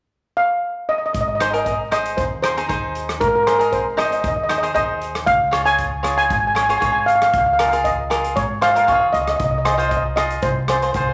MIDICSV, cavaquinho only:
0, 0, Header, 1, 2, 480
1, 0, Start_track
1, 0, Key_signature, -4, "major"
1, 0, Tempo, 515420
1, 1069, Time_signature, 4, 2, 24, 8
1, 10371, End_track
2, 0, Start_track
2, 0, Title_t, "Cavaquinho"
2, 0, Program_c, 0, 24
2, 1305, Note_on_c, 0, 63, 65
2, 1310, Note_on_c, 0, 72, 61
2, 1311, Note_on_c, 0, 68, 46
2, 1384, Note_off_c, 0, 63, 0
2, 1385, Note_off_c, 0, 68, 0
2, 1386, Note_off_c, 0, 72, 0
2, 1428, Note_on_c, 0, 70, 66
2, 1431, Note_on_c, 0, 68, 46
2, 1440, Note_on_c, 0, 63, 46
2, 1647, Note_off_c, 0, 68, 0
2, 1649, Note_off_c, 0, 63, 0
2, 1649, Note_off_c, 0, 70, 0
2, 1782, Note_on_c, 0, 63, 59
2, 1787, Note_on_c, 0, 72, 65
2, 1790, Note_on_c, 0, 68, 55
2, 2077, Note_off_c, 0, 63, 0
2, 2079, Note_off_c, 0, 68, 0
2, 2079, Note_off_c, 0, 72, 0
2, 2264, Note_on_c, 0, 63, 54
2, 2266, Note_on_c, 0, 68, 46
2, 2274, Note_on_c, 0, 72, 53
2, 2343, Note_off_c, 0, 63, 0
2, 2345, Note_off_c, 0, 68, 0
2, 2346, Note_off_c, 0, 72, 0
2, 2395, Note_on_c, 0, 63, 62
2, 2399, Note_on_c, 0, 68, 61
2, 2403, Note_on_c, 0, 72, 55
2, 2463, Note_off_c, 0, 63, 0
2, 2466, Note_off_c, 0, 68, 0
2, 2466, Note_off_c, 0, 72, 0
2, 2500, Note_on_c, 0, 63, 58
2, 2506, Note_on_c, 0, 68, 53
2, 2511, Note_on_c, 0, 72, 57
2, 2941, Note_off_c, 0, 63, 0
2, 2942, Note_off_c, 0, 68, 0
2, 2942, Note_off_c, 0, 72, 0
2, 3227, Note_on_c, 0, 72, 67
2, 3229, Note_on_c, 0, 68, 48
2, 3233, Note_on_c, 0, 63, 50
2, 3305, Note_off_c, 0, 63, 0
2, 3305, Note_off_c, 0, 68, 0
2, 3306, Note_off_c, 0, 72, 0
2, 3345, Note_on_c, 0, 68, 56
2, 3350, Note_on_c, 0, 70, 61
2, 3353, Note_on_c, 0, 63, 52
2, 3566, Note_off_c, 0, 63, 0
2, 3567, Note_off_c, 0, 68, 0
2, 3567, Note_off_c, 0, 70, 0
2, 3698, Note_on_c, 0, 63, 64
2, 3704, Note_on_c, 0, 68, 55
2, 3706, Note_on_c, 0, 72, 60
2, 3995, Note_off_c, 0, 63, 0
2, 3997, Note_off_c, 0, 72, 0
2, 3998, Note_off_c, 0, 68, 0
2, 4180, Note_on_c, 0, 63, 57
2, 4186, Note_on_c, 0, 72, 60
2, 4189, Note_on_c, 0, 68, 46
2, 4262, Note_off_c, 0, 63, 0
2, 4264, Note_off_c, 0, 68, 0
2, 4264, Note_off_c, 0, 72, 0
2, 4310, Note_on_c, 0, 63, 60
2, 4310, Note_on_c, 0, 68, 51
2, 4315, Note_on_c, 0, 72, 64
2, 4380, Note_off_c, 0, 68, 0
2, 4381, Note_off_c, 0, 63, 0
2, 4383, Note_off_c, 0, 72, 0
2, 4416, Note_on_c, 0, 63, 64
2, 4419, Note_on_c, 0, 68, 53
2, 4424, Note_on_c, 0, 72, 56
2, 4858, Note_off_c, 0, 63, 0
2, 4860, Note_off_c, 0, 68, 0
2, 4860, Note_off_c, 0, 72, 0
2, 5135, Note_on_c, 0, 65, 60
2, 5143, Note_on_c, 0, 68, 50
2, 5145, Note_on_c, 0, 73, 68
2, 5219, Note_off_c, 0, 65, 0
2, 5221, Note_off_c, 0, 68, 0
2, 5224, Note_off_c, 0, 73, 0
2, 5264, Note_on_c, 0, 73, 61
2, 5269, Note_on_c, 0, 68, 48
2, 5275, Note_on_c, 0, 65, 52
2, 5486, Note_off_c, 0, 65, 0
2, 5486, Note_off_c, 0, 68, 0
2, 5487, Note_off_c, 0, 73, 0
2, 5615, Note_on_c, 0, 73, 65
2, 5619, Note_on_c, 0, 68, 53
2, 5623, Note_on_c, 0, 65, 59
2, 5914, Note_off_c, 0, 65, 0
2, 5915, Note_off_c, 0, 68, 0
2, 5915, Note_off_c, 0, 73, 0
2, 6096, Note_on_c, 0, 65, 54
2, 6098, Note_on_c, 0, 68, 49
2, 6106, Note_on_c, 0, 73, 53
2, 6179, Note_off_c, 0, 65, 0
2, 6182, Note_off_c, 0, 68, 0
2, 6183, Note_off_c, 0, 73, 0
2, 6230, Note_on_c, 0, 65, 57
2, 6236, Note_on_c, 0, 73, 60
2, 6237, Note_on_c, 0, 68, 50
2, 6303, Note_off_c, 0, 65, 0
2, 6303, Note_off_c, 0, 73, 0
2, 6305, Note_off_c, 0, 68, 0
2, 6335, Note_on_c, 0, 65, 57
2, 6341, Note_on_c, 0, 68, 44
2, 6346, Note_on_c, 0, 73, 57
2, 6779, Note_off_c, 0, 65, 0
2, 6780, Note_off_c, 0, 68, 0
2, 6780, Note_off_c, 0, 73, 0
2, 7067, Note_on_c, 0, 70, 68
2, 7071, Note_on_c, 0, 68, 52
2, 7076, Note_on_c, 0, 65, 52
2, 7146, Note_off_c, 0, 65, 0
2, 7146, Note_off_c, 0, 68, 0
2, 7147, Note_off_c, 0, 70, 0
2, 7189, Note_on_c, 0, 70, 58
2, 7195, Note_on_c, 0, 68, 53
2, 7198, Note_on_c, 0, 65, 59
2, 7409, Note_off_c, 0, 65, 0
2, 7410, Note_off_c, 0, 68, 0
2, 7410, Note_off_c, 0, 70, 0
2, 7542, Note_on_c, 0, 68, 57
2, 7545, Note_on_c, 0, 70, 60
2, 7547, Note_on_c, 0, 65, 56
2, 7837, Note_off_c, 0, 65, 0
2, 7838, Note_off_c, 0, 70, 0
2, 7839, Note_off_c, 0, 68, 0
2, 8022, Note_on_c, 0, 72, 61
2, 8027, Note_on_c, 0, 68, 43
2, 8029, Note_on_c, 0, 65, 53
2, 8103, Note_off_c, 0, 65, 0
2, 8104, Note_off_c, 0, 68, 0
2, 8104, Note_off_c, 0, 72, 0
2, 8149, Note_on_c, 0, 65, 55
2, 8156, Note_on_c, 0, 68, 43
2, 8157, Note_on_c, 0, 70, 66
2, 8223, Note_off_c, 0, 65, 0
2, 8223, Note_off_c, 0, 68, 0
2, 8225, Note_off_c, 0, 70, 0
2, 8263, Note_on_c, 0, 65, 57
2, 8268, Note_on_c, 0, 68, 56
2, 8275, Note_on_c, 0, 73, 62
2, 8704, Note_off_c, 0, 65, 0
2, 8704, Note_off_c, 0, 68, 0
2, 8704, Note_off_c, 0, 73, 0
2, 8985, Note_on_c, 0, 72, 64
2, 8987, Note_on_c, 0, 68, 50
2, 8992, Note_on_c, 0, 65, 53
2, 9065, Note_off_c, 0, 65, 0
2, 9065, Note_off_c, 0, 68, 0
2, 9066, Note_off_c, 0, 72, 0
2, 9104, Note_on_c, 0, 65, 61
2, 9110, Note_on_c, 0, 72, 65
2, 9112, Note_on_c, 0, 68, 39
2, 9326, Note_off_c, 0, 65, 0
2, 9328, Note_off_c, 0, 68, 0
2, 9329, Note_off_c, 0, 72, 0
2, 9468, Note_on_c, 0, 65, 56
2, 9471, Note_on_c, 0, 68, 54
2, 9479, Note_on_c, 0, 75, 62
2, 9760, Note_off_c, 0, 65, 0
2, 9763, Note_off_c, 0, 68, 0
2, 9764, Note_off_c, 0, 75, 0
2, 9951, Note_on_c, 0, 72, 59
2, 9957, Note_on_c, 0, 68, 47
2, 9965, Note_on_c, 0, 65, 47
2, 10029, Note_off_c, 0, 68, 0
2, 10030, Note_off_c, 0, 65, 0
2, 10030, Note_off_c, 0, 72, 0
2, 10082, Note_on_c, 0, 72, 67
2, 10086, Note_on_c, 0, 68, 46
2, 10092, Note_on_c, 0, 65, 50
2, 10149, Note_off_c, 0, 65, 0
2, 10149, Note_off_c, 0, 68, 0
2, 10150, Note_off_c, 0, 72, 0
2, 10198, Note_on_c, 0, 65, 56
2, 10202, Note_on_c, 0, 68, 52
2, 10208, Note_on_c, 0, 72, 62
2, 10371, Note_off_c, 0, 65, 0
2, 10371, Note_off_c, 0, 68, 0
2, 10371, Note_off_c, 0, 72, 0
2, 10371, End_track
0, 0, End_of_file